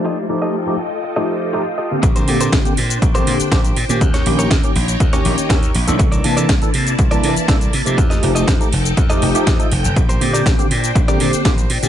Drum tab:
HH |----------------|xxoxxxoxxxoxxxox|xxoxxxoxxxoxxxox|xxoxxxoxxxoxxxox|
SH |----------------|xx-xxx-xxx-xxx-x|xx-xxx-xxx-xxx-x|xx-xxx-xxx-xxx-x|
SD |----------------|----o-------o---|-o--o-------o---|----o-------o---|
BD |----------------|o---o---o---o---|o---o---o---o---|o---o---o---o---|

HH |xxoxxxoxxxoxxxox|xxoxxxoxxxoxxxox|
SH |xx-xxx-xxx-xxx-x|xx-xxx-xxx-xxx-x|
SD |-o--o-------o---|----o-------o---|
BD |o---o---o---o---|o---o---o---o---|